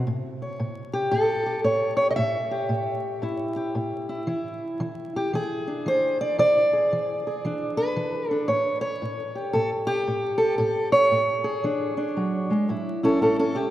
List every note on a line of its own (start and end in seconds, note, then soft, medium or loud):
0.07 0.56 A2 medium
0.42 1.11 C#5 soft
0.60 1.08 A2 medium
0.94 1.45 G4 medium
1.11 1.61 A2 medium
1.11 1.64 A4 medium
1.46 2.16 G4 soft
1.64 2.13 A2 medium
1.64 1.95 C#5 medium
1.97 2.10 C#5 medium
2.10 2.15 D#5 medium
2.16 2.67 A2 medium
2.16 4.28 E5 loud
2.51 3.55 G4 soft
2.69 3.19 A2 medium
3.22 3.71 A2 medium
3.22 4.09 E4 medium
3.56 4.26 G4 soft
3.75 4.24 A2 medium
4.09 4.28 E4 soft
4.27 4.76 E3 medium
4.27 5.16 E4 medium
4.80 5.29 E3 medium
5.16 5.35 G4 medium
5.33 5.82 E3 medium
5.33 6.40 G#4 loud
5.67 6.37 D4 soft
5.86 6.35 E3 medium
5.86 6.20 C5 medium
6.21 6.38 D5 loud
6.38 6.87 E3 medium
6.38 7.77 D5 loud
6.73 7.25 G#4 soft
6.92 7.41 E3 medium
7.27 8.48 G#4 soft
7.45 7.93 E3 medium
7.45 8.30 D4 soft
7.77 8.29 B4 loud
7.96 8.45 E3 medium
8.29 8.47 D4 soft
8.29 8.48 A4 loud
8.48 8.98 A2 medium
8.48 8.80 C#5 medium
8.81 9.53 C#5 medium
9.02 9.51 A2 medium
9.35 9.86 G4 soft
9.53 10.03 A2 medium
9.53 9.69 A4 loud
9.87 10.92 G4 medium
10.08 10.56 A2 medium
10.38 10.57 A4 medium
10.58 11.08 A2 medium
10.58 10.92 A4 medium
10.92 11.64 C#5 medium
11.11 11.60 A2 medium
11.44 12.69 G#4 medium
11.64 12.13 E3 medium
11.64 11.96 D4 soft
11.97 12.67 D4 soft
12.17 12.50 F#3 medium
12.50 12.69 G#3 medium
12.69 13.18 A2 medium
12.69 13.02 E4 soft
13.03 13.21 C#4 medium
13.03 13.54 E4 soft
13.03 13.21 A4 medium
13.21 13.70 A2 medium
13.21 13.38 C#4 medium
13.21 13.39 A4 medium
13.39 13.57 C#4 medium
13.39 13.57 A4 medium
13.55 13.64 E4 medium
13.55 13.70 G4 medium